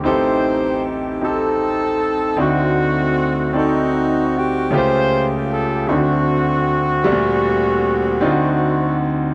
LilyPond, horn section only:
\new Staff \with { instrumentName = "Horn section" } { \time 6/8 \key d \phrygian \tempo 4. = 51 << { c''4 r8 a'4. | fis'4. ees'4 g'8 | bis'8 r8 a'8 fis'4.~ | fis'2~ fis'8 r8 | } \\ { <ees' g'>4. <c' ees'>4. | <a c'>4. <c' fis'>4. | <eis' g'>4. <a c'>4.~ | <a c'>2~ <a c'>8 r8 | } >> }